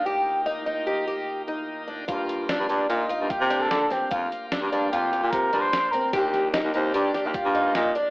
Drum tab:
HH |----------|xxxxxxxxxx|xxxxxxxxxx|xxxxxxxxxx|
SD |----------|--o-----oo|--o----oo-|-oo--o--o-|
BD |----------|o-----o---|o-----o---|o-----o---|